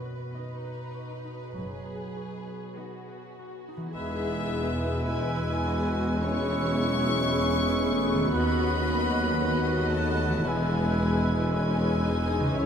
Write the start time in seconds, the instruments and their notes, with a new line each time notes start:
Already playing: harp B2 B3 F#4, violin section B4
0.05 harp B4
0.34 viola section D#3 B3, violin section D#4, harp D#5
0.64 harp B4
0.94 harp F#4
1.24 harp D#4
1.53 double bass section F#1, cello section F#2, harp F#3, violin section G#4
1.85 harp B3
2.17 harp F#4
2.47 harp B4
2.76 viola section D#3 B3, violin section F#4, harp D#5
3.08 harp B4
3.39 harp F#4
3.68 harp D#4
3.77 harp E3
3.82 harp B3
3.86 harp E4
3.91 french horn section E3, viola section B3 G#4, harp G#4
3.95 double bass section E1, tuba E1, cello section E2, bassoon G#3, clarinet B3, violin section G#4 E5, oboe B4, flute E6
4.48 violin section B4
5.03 viola section G#3 E4, french horn section G#3, violin section G#5
5.63 viola section F#4
6.21 viola section E3 G#4, french horn section C#4, violin section E4 C#5 C#6
6.75 viola section F#3
7.28 viola section G#3 G#4, violin section B4
7.81 viola section A3
8.15 harp D#3
8.19 harp B3
8.23 harp F#4
8.28 harp B4, violin section B5
8.32 double bass section D#2, cello section D#2, tuba D#2, bassoon F#3, french horn section B3, viola section B3 F#4, violin section F#4 D#5, flute F#6
8.86 viola section F#3
9.39 viola section G#3, violin section F#4 D#5
9.91 french horn section A3, viola section A3, violin section A5
10.29 harp E3
10.34 harp B3
10.38 harp E4
10.42 double bass section E1, french horn section G#3, harp B4
10.46 tuba E1, cello section E2, bassoon G#3, viola section B3 E4, clarinet B3, violin section G#4 B4 G#5, oboe B4, flute E6
11.00 viola section G#3
11.51 french horn section G#3, viola section C#4, violin section B4 G#5
12.04 viola section D#4
12.40 harp C#3
12.45 harp C#4
12.49 harp E4
12.54 tuba C#2, double bass section C#2, french horn section C#3, cello section C#3, viola section F#3 E4, clarinet E4, violin section C#5, harp E5
12.58 violin section A4 C#5, oboe C#5